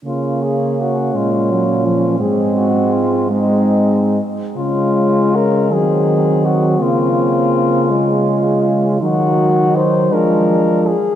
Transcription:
X:1
M:6/8
L:1/8
Q:3/8=54
K:Db
V:1 name="French horn"
F A G F3 | A G F E2 z | F2 B A2 G | F4- F z |
G2 c B2 A |]
V:2 name="French horn"
D6 | C3 C2 z | D3 C3- | C3 F3 |
E3 =D2 z |]
V:3 name="French horn" clef=bass
B,3 A, G, F, | A,3 A,2 z | A,3 G,3 | B,3 A,3 |
G,3 A,2 z |]
V:4 name="French horn" clef=bass
D,3 B,,3 | A,,4- A,, z | D,3 E,3 | D,6 |
E,3 F,2 z |]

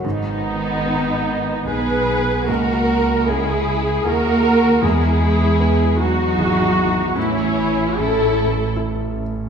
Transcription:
X:1
M:3/4
L:1/8
Q:1/4=77
K:G#m
V:1 name="Viola section"
D4 B2 | A2 G2 A2 | G3 F3 | E2 =A2 z2 |]
V:2 name="Violin section"
D4 B2 | A2 G2 A2 | G3 F3 | E2 =A2 z2 |]
V:3 name="Violin section"
B,4 G2 | F2 E2 F2 | E3 D3 | C2 E2 z2 |]
V:4 name="Felt piano"
G,,2 B,2 [DG]2 | C,,2 C2 [EG]2 | E,,2 B,2 [E,G]2 | =A,,2 C2 [E=A]2 |]
V:5 name="Cello section" clef=bass
D,4 B,2 | A,2 G,2 A,2 | G,3 F,3 | E,2 =A,2 z2 |]
V:6 name="Double bass section" clef=bass
G,,,4 B,,,2 | C,,4 D,,2 | E,,4 G,,,2 | =A,,,6 |]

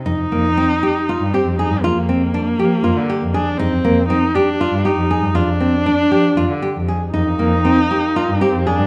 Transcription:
X:1
M:7/8
L:1/16
Q:1/4=118
K:Cm
V:1 name="Nylon-string guitar"
E2 B,2 C2 G2 F2 G2 A2 | F2 C2 D2 G2 F2 G2 A2 | E2 B,2 C2 G2 F2 G2 A2 | F2 C2 D2 G2 F2 G2 A2 |
E2 B,2 C2 G2 F2 G2 A2 |]
V:2 name="Viola"
E8- E2 C2 E2 | B,12 D2 | C4 E2 D4 E4 | D12 z2 |
E8- E2 C2 D2 |]
V:3 name="Woodwind section"
z12 z2 | z12 z2 | z12 z2 | z12 z2 |
[B,CE]12- [B,CE]2 |]
V:4 name="Cello" clef=bass
F,, F,, F,,2 z4 z G,,2 F,, z G,, | F,, F,,4- F,, F,2 F,, D, z F,,3 | F,, F,, F,,2 z4 z G,,2 F,, z G,, | F,, F,,4- F,, F,2 F,, D, z F,,3 |
F,, F,, F,,2 z4 z G,,2 F,, z G,, |]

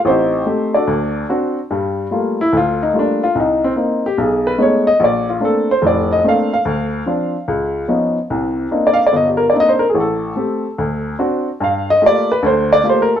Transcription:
X:1
M:4/4
L:1/16
Q:"Swing" 1/4=146
K:Gm
V:1 name="Upright piano"
[CEGc]6 [D^FAd]6 z4 | z6 =E2 F2 _E2 D2 F2 | E2 C2 z2 G2 ^G2 =B2 ^c2 ^d2 | d2 F2 A2 c2 d2 e2 f2 f2- |
f8 z8 | z4 z d f d e G B d e c B _A | A12 z4 | f2 e2 d2 =B2 c2 d2 (3c2 _B2 A2 |]
V:2 name="Upright piano"
A,,,4 [A,CG]2 z2 D,,4 [CD^F]2 z2 | [G,,G,]4 [G,A,B,F]2 z2 D,,4 [G,A,B,F]2 z2 | C,,4 [B,CE]2 z2 =B,,,4 [^G,A,=B,^C^D]2 z2 | B,,,4 [A,B,CD]2 z2 [F,,,A,,]4 [A,B,CD]2 z2 |
D,,4 [F,CD]2 z2 ^C,,4 [^E,=B,^C^D]2 z2 | [C,,C,]4 [B,CDE]2 z2 G,,,4 [B,CDE]2 z2 | A,,,4 [A,CG]2 z2 D,,4 [CD^F]2 z2 | G,,4 [A,B,FG]2 z2 [D,,D,]4 [A,B,FG]2 z2 |]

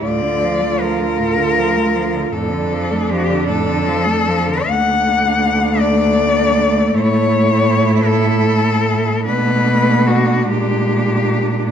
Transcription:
X:1
M:6/8
L:1/16
Q:3/8=52
K:Dm
V:1 name="Cello"
d4 B8 | A4 G2 A6 | [K:D] f6 d6 | c6 A6 |
B4 F2 G6 |]
V:2 name="Cello"
F12 | D12 | [K:D] D12 | E12 |
D12 |]
V:3 name="Cello" clef=bass
A,, D, F, A, F, D, A,, D, F, A, F, D, | A,, D, F, A, F, D, A,, D, F, A, F, D, | [K:D] A,12- | A,12 |
A,6 _A,6 |]
V:4 name="Cello" clef=bass
D,,12 | F,,12 | [K:D] D,,12 | A,,12 |
B,,6 _B,,6 |]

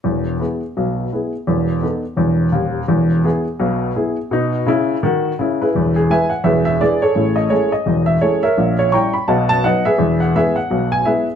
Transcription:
X:1
M:4/4
L:1/8
Q:"Swing" 1/4=169
K:E
V:1 name="Upright piano"
z8 | z8 | z8 | z6 z [EGB]- |
[EGB] G [Beg] f [GBe] e [GB=d] [GAc]- | [GAc] d [GAc] d2 e [GAc] [^Ace]- | [^Ace] c [=g^ac'] b [df=a] a [Bdf] [^GBe]- | [GBe] f [GBe] f2 g [GBe] z |]
V:2 name="Upright piano" clef=bass
[E,,,E,,]2 [B,EG]2 [B,,,B,,]2 [B,EG]2 | [E,,,E,,]2 [B,DA]2 [E,,,E,,]2 [D,,,D,,]2 | [E,,,E,,]2 [B,EG]2 [B,,,B,,]2 [B,EG]2 | [B,,D]2 [C,E]2 [D,F]2 [C,E]2 |
[E,,,E,,]2 [G,E]2 [E,,,E,,]2 [G,=DE]2 | [A,,,A,,]2 [G,CE]2 [E,,,E,,]2 [G,CE]2 | [^A,,,^A,,]2 [=G,CE]2 [B,,,B,,]2 [F,B,D]2 | [E,,,E,,]2 [G,B,E]2 [B,,,B,,]2 [G,B,E]2 |]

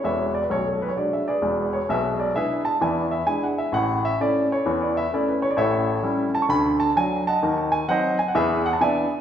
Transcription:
X:1
M:4/4
L:1/16
Q:"Swing" 1/4=130
K:A
V:1 name="Grand piano"
[Bce]2 d B c A B c d e [GBd]4 c2 | [GBe]2 d2 [GBe]2 a2 [deg]2 e2 g f e2 | f2 e2 d2 c3 d e2 d B c d | [Ace]6 a c' b2 a2 g2 [^dfa]2- |
[^dfa]2 g2 [^Bdf]2 g f [G=Be]2 f a [=deg]4 |]
V:2 name="Grand piano" clef=bass
[E,,,E,,]4 [B,,,,B,,,]4 [G,DF]4 [E,,,E,,]4 | [B,,,B,,]4 [G,DE]4 [E,,E,]4 [G,DE]4 | [A,,,A,,]4 [A,CE]4 [E,,E,]4 [A,CE]4 | [A,,,A,,]4 [=G,CE]4 [D,,D,]4 [F,DF]4 |
[^D,,^D,]4 [F,^B,^D]4 [E,,E,]4 [E,=B,=D]4 |]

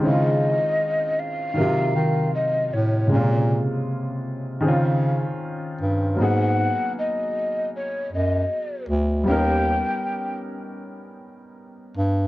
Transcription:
X:1
M:4/4
L:1/16
Q:"Swing 16ths" 1/4=78
K:Abmix
V:1 name="Flute"
e6 f6 e2 d2- | d2 z12 z2 | g4 e4 d2 e4 z2 | =g6 z8 z2 |]
V:2 name="Upright piano"
[E,A,CD_F=F]8 [C,E,G,FB]8 | [C,D,A,B,F]8 [E,CDFA]8 | [G,B,_CEA]16 | [=G,_CDEB]16 |]
V:3 name="Bass clarinet" clef=bass
D,3 z4 z C,2 E,2 z2 =A,,2 | B,,3 z4 z D,4 z2 =G,,2 | A,,3 z6 z G,,2 z2 =D,,2 | E,,3 z8 z3 =G,,2 |]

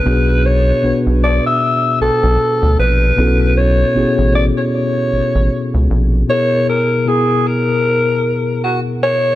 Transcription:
X:1
M:4/4
L:1/16
Q:"Swing 16ths" 1/4=77
K:A
V:1 name="Alto saxophone"
B2 c3 z d e3 A4 B2- | B2 c4 d c6- c z2 | c2 ^A2 G2 A6 F2 c2 |]
V:2 name="Tine electric piano"
[B,,B,DFG]3 z [B,,B,DFB]6 z6 | [B,,B,CEFA]3 z [B,,B,CEFG]6 z6 | [B,,B,EG^A]3 z [B,,B,EGA]6 z6 |]
V:3 name="Analog synth bass" clef=bass
B,,,4 B,,, B,,,2 z3 B,,, B,,, z D,, ^A,,,2 | B,,,4 A,,, A,,,2 z3 A,,, A,,, z C,, ^A,,,2 | z16 |]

